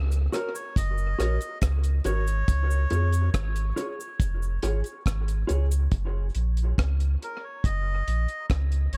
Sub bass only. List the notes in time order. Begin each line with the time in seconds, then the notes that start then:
Already playing: C#2
0.77 F#1
1.20 A#1
1.62 C#2
2.05 G#1
2.48 C#2
2.91 F2
3.34 G#1
4.20 F1
4.63 G#1
5.06 G#1
5.50 C#2
5.92 F#1
6.35 A#1
6.78 C#2
7.64 F#1
8.07 A#1
8.50 C#2
8.93 G#1